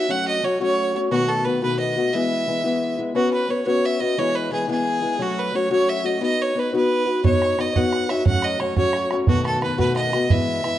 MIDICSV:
0, 0, Header, 1, 4, 480
1, 0, Start_track
1, 0, Tempo, 340329
1, 133, Time_signature, 6, 3, 24, 8
1, 15214, End_track
2, 0, Start_track
2, 0, Title_t, "Fiddle"
2, 0, Program_c, 0, 110
2, 0, Note_on_c, 0, 76, 93
2, 147, Note_on_c, 0, 78, 108
2, 168, Note_off_c, 0, 76, 0
2, 380, Note_off_c, 0, 78, 0
2, 387, Note_on_c, 0, 75, 94
2, 621, Note_on_c, 0, 73, 89
2, 642, Note_off_c, 0, 75, 0
2, 857, Note_off_c, 0, 73, 0
2, 880, Note_on_c, 0, 73, 103
2, 1370, Note_off_c, 0, 73, 0
2, 1569, Note_on_c, 0, 66, 102
2, 1809, Note_on_c, 0, 69, 91
2, 1831, Note_off_c, 0, 66, 0
2, 2040, Note_on_c, 0, 71, 82
2, 2061, Note_off_c, 0, 69, 0
2, 2287, Note_off_c, 0, 71, 0
2, 2300, Note_on_c, 0, 71, 93
2, 2521, Note_off_c, 0, 71, 0
2, 2527, Note_on_c, 0, 75, 83
2, 3002, Note_on_c, 0, 76, 93
2, 3023, Note_off_c, 0, 75, 0
2, 4209, Note_off_c, 0, 76, 0
2, 4453, Note_on_c, 0, 66, 87
2, 4678, Note_off_c, 0, 66, 0
2, 4703, Note_on_c, 0, 71, 80
2, 4938, Note_on_c, 0, 73, 76
2, 4959, Note_off_c, 0, 71, 0
2, 5170, Note_off_c, 0, 73, 0
2, 5178, Note_on_c, 0, 73, 89
2, 5433, Note_on_c, 0, 76, 81
2, 5454, Note_off_c, 0, 73, 0
2, 5646, Note_on_c, 0, 75, 88
2, 5668, Note_off_c, 0, 76, 0
2, 5902, Note_on_c, 0, 73, 104
2, 5923, Note_off_c, 0, 75, 0
2, 6139, Note_on_c, 0, 71, 91
2, 6160, Note_off_c, 0, 73, 0
2, 6373, Note_off_c, 0, 71, 0
2, 6381, Note_on_c, 0, 68, 76
2, 6602, Note_off_c, 0, 68, 0
2, 6638, Note_on_c, 0, 68, 93
2, 7363, Note_on_c, 0, 66, 92
2, 7385, Note_off_c, 0, 68, 0
2, 7596, Note_on_c, 0, 71, 90
2, 7617, Note_off_c, 0, 66, 0
2, 7835, Note_on_c, 0, 73, 92
2, 7856, Note_off_c, 0, 71, 0
2, 8056, Note_off_c, 0, 73, 0
2, 8065, Note_on_c, 0, 73, 103
2, 8308, Note_on_c, 0, 76, 90
2, 8329, Note_off_c, 0, 73, 0
2, 8543, Note_on_c, 0, 75, 84
2, 8565, Note_off_c, 0, 76, 0
2, 8769, Note_off_c, 0, 75, 0
2, 8777, Note_on_c, 0, 75, 102
2, 9050, Note_on_c, 0, 73, 89
2, 9071, Note_off_c, 0, 75, 0
2, 9297, Note_on_c, 0, 71, 86
2, 9318, Note_off_c, 0, 73, 0
2, 9517, Note_off_c, 0, 71, 0
2, 9534, Note_on_c, 0, 71, 96
2, 10185, Note_off_c, 0, 71, 0
2, 10232, Note_on_c, 0, 73, 102
2, 10720, Note_on_c, 0, 75, 92
2, 10741, Note_off_c, 0, 73, 0
2, 10949, Note_on_c, 0, 78, 103
2, 10970, Note_off_c, 0, 75, 0
2, 11424, Note_on_c, 0, 76, 91
2, 11445, Note_off_c, 0, 78, 0
2, 11644, Note_off_c, 0, 76, 0
2, 11652, Note_on_c, 0, 78, 110
2, 11900, Note_on_c, 0, 75, 99
2, 11921, Note_off_c, 0, 78, 0
2, 12128, Note_on_c, 0, 73, 92
2, 12149, Note_off_c, 0, 75, 0
2, 12371, Note_off_c, 0, 73, 0
2, 12380, Note_on_c, 0, 73, 101
2, 12879, Note_off_c, 0, 73, 0
2, 13092, Note_on_c, 0, 66, 102
2, 13316, Note_off_c, 0, 66, 0
2, 13341, Note_on_c, 0, 69, 89
2, 13560, Note_off_c, 0, 69, 0
2, 13581, Note_on_c, 0, 71, 85
2, 13800, Note_off_c, 0, 71, 0
2, 13810, Note_on_c, 0, 71, 97
2, 14034, Note_off_c, 0, 71, 0
2, 14042, Note_on_c, 0, 75, 96
2, 14546, Note_on_c, 0, 76, 99
2, 14567, Note_off_c, 0, 75, 0
2, 15214, Note_off_c, 0, 76, 0
2, 15214, End_track
3, 0, Start_track
3, 0, Title_t, "Steel-string acoustic guitar"
3, 0, Program_c, 1, 25
3, 123, Note_on_c, 1, 54, 65
3, 129, Note_on_c, 1, 61, 73
3, 136, Note_on_c, 1, 57, 80
3, 141, Note_on_c, 1, 66, 80
3, 587, Note_off_c, 1, 54, 0
3, 597, Note_off_c, 1, 61, 0
3, 604, Note_on_c, 1, 54, 54
3, 605, Note_off_c, 1, 57, 0
3, 614, Note_on_c, 1, 61, 66
3, 617, Note_off_c, 1, 66, 0
3, 622, Note_on_c, 1, 57, 64
3, 633, Note_on_c, 1, 66, 62
3, 832, Note_off_c, 1, 66, 0
3, 838, Note_off_c, 1, 57, 0
3, 843, Note_off_c, 1, 61, 0
3, 848, Note_off_c, 1, 54, 0
3, 849, Note_on_c, 1, 66, 63
3, 855, Note_on_c, 1, 57, 55
3, 860, Note_on_c, 1, 61, 58
3, 866, Note_on_c, 1, 54, 50
3, 1311, Note_off_c, 1, 66, 0
3, 1327, Note_on_c, 1, 66, 50
3, 1328, Note_off_c, 1, 57, 0
3, 1337, Note_off_c, 1, 61, 0
3, 1340, Note_off_c, 1, 54, 0
3, 1345, Note_on_c, 1, 57, 44
3, 1361, Note_on_c, 1, 61, 40
3, 1560, Note_off_c, 1, 57, 0
3, 1564, Note_off_c, 1, 61, 0
3, 1564, Note_on_c, 1, 47, 82
3, 1566, Note_off_c, 1, 66, 0
3, 1566, Note_on_c, 1, 51, 73
3, 1570, Note_on_c, 1, 59, 77
3, 1577, Note_on_c, 1, 57, 76
3, 1582, Note_on_c, 1, 66, 86
3, 2033, Note_off_c, 1, 51, 0
3, 2049, Note_off_c, 1, 47, 0
3, 2049, Note_on_c, 1, 51, 60
3, 2056, Note_off_c, 1, 57, 0
3, 2056, Note_off_c, 1, 59, 0
3, 2059, Note_off_c, 1, 66, 0
3, 2061, Note_on_c, 1, 59, 63
3, 2072, Note_on_c, 1, 57, 59
3, 2077, Note_on_c, 1, 66, 60
3, 2270, Note_off_c, 1, 66, 0
3, 2274, Note_off_c, 1, 57, 0
3, 2282, Note_off_c, 1, 51, 0
3, 2283, Note_off_c, 1, 59, 0
3, 2287, Note_on_c, 1, 66, 56
3, 2291, Note_on_c, 1, 57, 58
3, 2299, Note_on_c, 1, 51, 50
3, 2300, Note_on_c, 1, 59, 51
3, 2304, Note_on_c, 1, 47, 52
3, 2751, Note_off_c, 1, 66, 0
3, 2766, Note_off_c, 1, 57, 0
3, 2768, Note_on_c, 1, 66, 48
3, 2777, Note_off_c, 1, 51, 0
3, 2780, Note_off_c, 1, 47, 0
3, 2783, Note_on_c, 1, 57, 47
3, 2791, Note_off_c, 1, 59, 0
3, 2796, Note_on_c, 1, 59, 38
3, 3004, Note_off_c, 1, 59, 0
3, 3011, Note_on_c, 1, 52, 75
3, 3012, Note_off_c, 1, 66, 0
3, 3015, Note_off_c, 1, 57, 0
3, 3016, Note_on_c, 1, 56, 76
3, 3021, Note_on_c, 1, 59, 74
3, 3031, Note_on_c, 1, 64, 79
3, 3461, Note_off_c, 1, 52, 0
3, 3475, Note_off_c, 1, 56, 0
3, 3478, Note_on_c, 1, 52, 56
3, 3491, Note_on_c, 1, 56, 54
3, 3495, Note_off_c, 1, 59, 0
3, 3495, Note_off_c, 1, 64, 0
3, 3501, Note_on_c, 1, 59, 59
3, 3512, Note_on_c, 1, 64, 57
3, 3702, Note_off_c, 1, 64, 0
3, 3717, Note_off_c, 1, 59, 0
3, 3719, Note_off_c, 1, 56, 0
3, 3719, Note_on_c, 1, 64, 66
3, 3727, Note_off_c, 1, 52, 0
3, 3734, Note_on_c, 1, 59, 61
3, 3736, Note_on_c, 1, 56, 60
3, 3741, Note_on_c, 1, 52, 55
3, 4188, Note_off_c, 1, 64, 0
3, 4205, Note_on_c, 1, 64, 50
3, 4212, Note_off_c, 1, 59, 0
3, 4213, Note_off_c, 1, 56, 0
3, 4218, Note_on_c, 1, 59, 49
3, 4219, Note_off_c, 1, 52, 0
3, 4230, Note_on_c, 1, 56, 42
3, 4420, Note_off_c, 1, 59, 0
3, 4436, Note_off_c, 1, 56, 0
3, 4437, Note_on_c, 1, 59, 75
3, 4442, Note_on_c, 1, 61, 73
3, 4447, Note_on_c, 1, 66, 77
3, 4451, Note_off_c, 1, 64, 0
3, 4457, Note_on_c, 1, 71, 76
3, 4898, Note_off_c, 1, 59, 0
3, 4905, Note_off_c, 1, 61, 0
3, 4913, Note_off_c, 1, 66, 0
3, 4915, Note_on_c, 1, 59, 59
3, 4921, Note_on_c, 1, 61, 60
3, 4923, Note_off_c, 1, 71, 0
3, 4930, Note_on_c, 1, 66, 58
3, 4940, Note_on_c, 1, 71, 60
3, 5143, Note_off_c, 1, 71, 0
3, 5156, Note_off_c, 1, 66, 0
3, 5160, Note_on_c, 1, 71, 65
3, 5162, Note_off_c, 1, 61, 0
3, 5163, Note_off_c, 1, 59, 0
3, 5173, Note_on_c, 1, 66, 55
3, 5179, Note_on_c, 1, 61, 53
3, 5180, Note_on_c, 1, 59, 47
3, 5627, Note_off_c, 1, 71, 0
3, 5644, Note_on_c, 1, 71, 50
3, 5645, Note_off_c, 1, 66, 0
3, 5658, Note_off_c, 1, 59, 0
3, 5658, Note_off_c, 1, 61, 0
3, 5662, Note_on_c, 1, 66, 50
3, 5677, Note_on_c, 1, 61, 39
3, 5888, Note_on_c, 1, 52, 76
3, 5890, Note_off_c, 1, 71, 0
3, 5893, Note_off_c, 1, 61, 0
3, 5898, Note_on_c, 1, 56, 74
3, 5899, Note_off_c, 1, 66, 0
3, 5905, Note_on_c, 1, 59, 80
3, 5907, Note_on_c, 1, 64, 91
3, 6345, Note_off_c, 1, 52, 0
3, 6359, Note_off_c, 1, 56, 0
3, 6362, Note_on_c, 1, 52, 58
3, 6368, Note_off_c, 1, 59, 0
3, 6376, Note_on_c, 1, 56, 61
3, 6377, Note_off_c, 1, 64, 0
3, 6384, Note_on_c, 1, 59, 57
3, 6394, Note_on_c, 1, 64, 65
3, 6582, Note_off_c, 1, 64, 0
3, 6594, Note_off_c, 1, 56, 0
3, 6594, Note_off_c, 1, 59, 0
3, 6599, Note_on_c, 1, 64, 65
3, 6600, Note_off_c, 1, 52, 0
3, 6611, Note_on_c, 1, 56, 55
3, 6611, Note_on_c, 1, 59, 62
3, 6617, Note_on_c, 1, 52, 50
3, 7058, Note_off_c, 1, 64, 0
3, 7074, Note_off_c, 1, 59, 0
3, 7075, Note_on_c, 1, 64, 53
3, 7090, Note_off_c, 1, 56, 0
3, 7091, Note_on_c, 1, 59, 48
3, 7097, Note_off_c, 1, 52, 0
3, 7107, Note_on_c, 1, 56, 42
3, 7318, Note_on_c, 1, 54, 78
3, 7323, Note_off_c, 1, 56, 0
3, 7326, Note_off_c, 1, 64, 0
3, 7327, Note_off_c, 1, 59, 0
3, 7329, Note_on_c, 1, 61, 73
3, 7333, Note_on_c, 1, 57, 81
3, 7341, Note_on_c, 1, 66, 89
3, 7795, Note_off_c, 1, 54, 0
3, 7800, Note_off_c, 1, 61, 0
3, 7801, Note_on_c, 1, 54, 57
3, 7806, Note_off_c, 1, 57, 0
3, 7817, Note_on_c, 1, 61, 56
3, 7823, Note_on_c, 1, 57, 60
3, 7824, Note_off_c, 1, 66, 0
3, 7829, Note_on_c, 1, 66, 63
3, 8029, Note_off_c, 1, 66, 0
3, 8040, Note_off_c, 1, 57, 0
3, 8045, Note_off_c, 1, 61, 0
3, 8045, Note_on_c, 1, 66, 61
3, 8049, Note_off_c, 1, 54, 0
3, 8057, Note_on_c, 1, 57, 63
3, 8062, Note_on_c, 1, 61, 51
3, 8065, Note_on_c, 1, 54, 54
3, 8513, Note_off_c, 1, 66, 0
3, 8518, Note_off_c, 1, 57, 0
3, 8519, Note_on_c, 1, 66, 54
3, 8531, Note_off_c, 1, 61, 0
3, 8535, Note_on_c, 1, 57, 48
3, 8548, Note_on_c, 1, 61, 39
3, 8749, Note_off_c, 1, 54, 0
3, 8754, Note_off_c, 1, 66, 0
3, 8755, Note_on_c, 1, 59, 71
3, 8756, Note_off_c, 1, 61, 0
3, 8762, Note_on_c, 1, 63, 79
3, 8765, Note_off_c, 1, 57, 0
3, 8770, Note_on_c, 1, 66, 75
3, 8773, Note_on_c, 1, 71, 78
3, 9219, Note_off_c, 1, 59, 0
3, 9231, Note_off_c, 1, 63, 0
3, 9236, Note_on_c, 1, 59, 54
3, 9247, Note_off_c, 1, 66, 0
3, 9248, Note_on_c, 1, 63, 57
3, 9249, Note_off_c, 1, 71, 0
3, 9253, Note_on_c, 1, 66, 65
3, 9266, Note_on_c, 1, 71, 60
3, 9468, Note_off_c, 1, 71, 0
3, 9480, Note_off_c, 1, 66, 0
3, 9484, Note_off_c, 1, 63, 0
3, 9485, Note_on_c, 1, 71, 64
3, 9486, Note_off_c, 1, 59, 0
3, 9497, Note_on_c, 1, 66, 61
3, 9501, Note_on_c, 1, 63, 57
3, 9509, Note_on_c, 1, 59, 49
3, 9934, Note_off_c, 1, 71, 0
3, 9951, Note_on_c, 1, 71, 51
3, 9962, Note_off_c, 1, 66, 0
3, 9967, Note_off_c, 1, 63, 0
3, 9968, Note_on_c, 1, 66, 44
3, 9983, Note_off_c, 1, 59, 0
3, 9984, Note_on_c, 1, 63, 39
3, 10194, Note_off_c, 1, 63, 0
3, 10200, Note_off_c, 1, 66, 0
3, 10203, Note_off_c, 1, 71, 0
3, 10206, Note_on_c, 1, 59, 78
3, 10211, Note_on_c, 1, 63, 79
3, 10217, Note_on_c, 1, 66, 74
3, 10223, Note_on_c, 1, 73, 81
3, 10668, Note_off_c, 1, 59, 0
3, 10680, Note_off_c, 1, 63, 0
3, 10685, Note_on_c, 1, 59, 61
3, 10697, Note_on_c, 1, 63, 58
3, 10699, Note_off_c, 1, 66, 0
3, 10699, Note_off_c, 1, 73, 0
3, 10705, Note_on_c, 1, 66, 58
3, 10716, Note_on_c, 1, 73, 64
3, 10908, Note_off_c, 1, 73, 0
3, 10917, Note_off_c, 1, 66, 0
3, 10925, Note_off_c, 1, 63, 0
3, 10925, Note_on_c, 1, 73, 63
3, 10930, Note_off_c, 1, 59, 0
3, 10934, Note_on_c, 1, 66, 55
3, 10942, Note_on_c, 1, 63, 51
3, 10948, Note_on_c, 1, 59, 53
3, 11390, Note_off_c, 1, 73, 0
3, 11407, Note_on_c, 1, 73, 48
3, 11418, Note_off_c, 1, 63, 0
3, 11418, Note_off_c, 1, 66, 0
3, 11421, Note_off_c, 1, 59, 0
3, 11424, Note_on_c, 1, 66, 44
3, 11438, Note_on_c, 1, 63, 43
3, 11640, Note_off_c, 1, 63, 0
3, 11640, Note_on_c, 1, 54, 75
3, 11641, Note_off_c, 1, 66, 0
3, 11646, Note_on_c, 1, 61, 76
3, 11651, Note_off_c, 1, 73, 0
3, 11654, Note_on_c, 1, 57, 77
3, 11658, Note_on_c, 1, 66, 80
3, 12102, Note_off_c, 1, 54, 0
3, 12112, Note_off_c, 1, 61, 0
3, 12119, Note_on_c, 1, 54, 57
3, 12127, Note_off_c, 1, 57, 0
3, 12128, Note_on_c, 1, 61, 59
3, 12136, Note_off_c, 1, 66, 0
3, 12144, Note_on_c, 1, 57, 64
3, 12150, Note_on_c, 1, 66, 64
3, 12344, Note_off_c, 1, 66, 0
3, 12354, Note_off_c, 1, 57, 0
3, 12359, Note_off_c, 1, 61, 0
3, 12361, Note_on_c, 1, 66, 60
3, 12367, Note_off_c, 1, 54, 0
3, 12371, Note_on_c, 1, 57, 59
3, 12376, Note_on_c, 1, 61, 53
3, 12384, Note_on_c, 1, 54, 54
3, 12825, Note_off_c, 1, 66, 0
3, 12840, Note_off_c, 1, 57, 0
3, 12842, Note_on_c, 1, 66, 49
3, 12855, Note_off_c, 1, 61, 0
3, 12857, Note_on_c, 1, 57, 47
3, 12859, Note_off_c, 1, 54, 0
3, 12873, Note_on_c, 1, 61, 42
3, 13073, Note_off_c, 1, 57, 0
3, 13082, Note_on_c, 1, 47, 79
3, 13082, Note_on_c, 1, 51, 75
3, 13083, Note_off_c, 1, 66, 0
3, 13087, Note_off_c, 1, 61, 0
3, 13090, Note_on_c, 1, 57, 78
3, 13093, Note_on_c, 1, 59, 79
3, 13100, Note_on_c, 1, 66, 77
3, 13538, Note_off_c, 1, 51, 0
3, 13555, Note_on_c, 1, 51, 60
3, 13562, Note_off_c, 1, 59, 0
3, 13564, Note_off_c, 1, 57, 0
3, 13567, Note_off_c, 1, 47, 0
3, 13568, Note_off_c, 1, 66, 0
3, 13568, Note_on_c, 1, 59, 63
3, 13581, Note_on_c, 1, 57, 61
3, 13585, Note_on_c, 1, 66, 60
3, 13776, Note_off_c, 1, 66, 0
3, 13781, Note_off_c, 1, 57, 0
3, 13791, Note_off_c, 1, 59, 0
3, 13792, Note_off_c, 1, 51, 0
3, 13793, Note_on_c, 1, 66, 66
3, 13798, Note_on_c, 1, 57, 64
3, 13808, Note_on_c, 1, 59, 59
3, 13809, Note_on_c, 1, 51, 53
3, 13818, Note_on_c, 1, 47, 59
3, 14267, Note_off_c, 1, 66, 0
3, 14284, Note_on_c, 1, 66, 48
3, 14285, Note_off_c, 1, 57, 0
3, 14290, Note_off_c, 1, 51, 0
3, 14295, Note_off_c, 1, 47, 0
3, 14301, Note_on_c, 1, 57, 44
3, 14305, Note_off_c, 1, 59, 0
3, 14311, Note_on_c, 1, 59, 43
3, 14518, Note_off_c, 1, 59, 0
3, 14519, Note_on_c, 1, 52, 79
3, 14528, Note_off_c, 1, 66, 0
3, 14530, Note_off_c, 1, 57, 0
3, 14530, Note_on_c, 1, 56, 74
3, 14535, Note_on_c, 1, 59, 79
3, 14541, Note_on_c, 1, 64, 79
3, 14972, Note_off_c, 1, 52, 0
3, 14984, Note_off_c, 1, 56, 0
3, 14988, Note_on_c, 1, 52, 52
3, 15001, Note_on_c, 1, 56, 59
3, 15005, Note_off_c, 1, 64, 0
3, 15006, Note_off_c, 1, 59, 0
3, 15011, Note_on_c, 1, 59, 58
3, 15022, Note_on_c, 1, 64, 66
3, 15214, Note_off_c, 1, 52, 0
3, 15214, Note_off_c, 1, 56, 0
3, 15214, Note_off_c, 1, 59, 0
3, 15214, Note_off_c, 1, 64, 0
3, 15214, End_track
4, 0, Start_track
4, 0, Title_t, "Bodhran"
4, 10216, Note_on_c, 9, 64, 74
4, 10342, Note_off_c, 9, 64, 0
4, 10342, Note_on_c, 9, 64, 23
4, 10462, Note_off_c, 9, 64, 0
4, 10462, Note_on_c, 9, 64, 51
4, 10604, Note_off_c, 9, 64, 0
4, 10701, Note_on_c, 9, 64, 54
4, 10842, Note_off_c, 9, 64, 0
4, 10943, Note_on_c, 9, 64, 72
4, 11084, Note_off_c, 9, 64, 0
4, 11178, Note_on_c, 9, 64, 57
4, 11319, Note_off_c, 9, 64, 0
4, 11414, Note_on_c, 9, 64, 62
4, 11555, Note_off_c, 9, 64, 0
4, 11646, Note_on_c, 9, 64, 77
4, 11772, Note_off_c, 9, 64, 0
4, 11772, Note_on_c, 9, 64, 25
4, 11880, Note_off_c, 9, 64, 0
4, 11880, Note_on_c, 9, 64, 55
4, 12021, Note_off_c, 9, 64, 0
4, 12127, Note_on_c, 9, 64, 59
4, 12268, Note_off_c, 9, 64, 0
4, 12363, Note_on_c, 9, 64, 79
4, 12504, Note_off_c, 9, 64, 0
4, 12595, Note_on_c, 9, 64, 66
4, 12736, Note_off_c, 9, 64, 0
4, 12844, Note_on_c, 9, 64, 68
4, 12985, Note_off_c, 9, 64, 0
4, 13076, Note_on_c, 9, 64, 87
4, 13209, Note_off_c, 9, 64, 0
4, 13209, Note_on_c, 9, 64, 27
4, 13330, Note_off_c, 9, 64, 0
4, 13330, Note_on_c, 9, 64, 67
4, 13471, Note_off_c, 9, 64, 0
4, 13570, Note_on_c, 9, 64, 63
4, 13711, Note_off_c, 9, 64, 0
4, 13810, Note_on_c, 9, 64, 80
4, 13951, Note_off_c, 9, 64, 0
4, 14047, Note_on_c, 9, 64, 61
4, 14188, Note_off_c, 9, 64, 0
4, 14291, Note_on_c, 9, 64, 63
4, 14432, Note_off_c, 9, 64, 0
4, 14529, Note_on_c, 9, 64, 81
4, 14647, Note_off_c, 9, 64, 0
4, 14647, Note_on_c, 9, 64, 25
4, 14788, Note_off_c, 9, 64, 0
4, 15009, Note_on_c, 9, 64, 61
4, 15150, Note_off_c, 9, 64, 0
4, 15214, End_track
0, 0, End_of_file